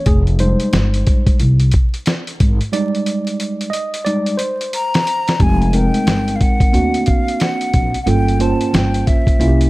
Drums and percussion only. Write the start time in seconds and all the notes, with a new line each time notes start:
0.06 kick, closed hi-hat
0.27 closed hi-hat
0.39 closed hi-hat
0.60 closed hi-hat
0.73 snare, closed hi-hat
0.94 closed hi-hat
1.07 kick, closed hi-hat
1.26 kick, closed hi-hat
1.39 closed hi-hat
1.60 closed hi-hat
1.71 kick, closed hi-hat
1.94 closed hi-hat
2.06 snare, closed hi-hat
2.27 closed hi-hat
2.40 kick, closed hi-hat
2.61 closed hi-hat
2.73 closed hi-hat
2.95 closed hi-hat
3.06 closed hi-hat
3.27 closed hi-hat
3.40 closed hi-hat
3.61 closed hi-hat
3.73 closed hi-hat
3.94 closed hi-hat
4.06 closed hi-hat
4.26 closed hi-hat
4.39 closed hi-hat
4.61 closed hi-hat
4.73 closed hi-hat
4.94 snare, closed hi-hat
5.07 closed hi-hat
5.28 snare, closed hi-hat
5.40 kick, closed hi-hat
5.62 closed hi-hat
5.73 closed hi-hat
5.94 closed hi-hat
6.07 snare, closed hi-hat
6.28 closed hi-hat
6.41 kick, closed hi-hat
6.60 kick, closed hi-hat
6.74 closed hi-hat
6.94 closed hi-hat
7.06 kick, closed hi-hat
7.28 closed hi-hat
7.40 snare, closed hi-hat
7.61 closed hi-hat
7.74 kick, closed hi-hat
7.94 closed hi-hat
8.07 closed hi-hat
8.28 closed hi-hat
8.40 closed hi-hat
8.61 closed hi-hat
8.74 snare, closed hi-hat
8.94 closed hi-hat
9.07 kick, closed hi-hat
9.27 kick, closed hi-hat
9.41 closed hi-hat
9.61 closed hi-hat